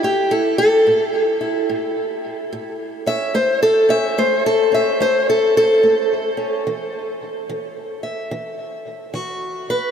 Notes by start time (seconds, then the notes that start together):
0.03 A2 G4
0.31 A4
0.58 A4
0.87 A2
1.41 E4
1.69 A2
2.53 A2
3.06 C#4 E5
3.34 A3 C5
3.63 A4
3.89 C#4 E5
4.18 A3 C5
4.46 A4
4.72 C#4 E5
5.00 A3 C5
5.30 A4
5.57 A4
5.83 A3
6.37 C#4
6.67 E3
7.49 E3
8.03 E5
8.31 E3
9.14 E3 F#4
9.70 B4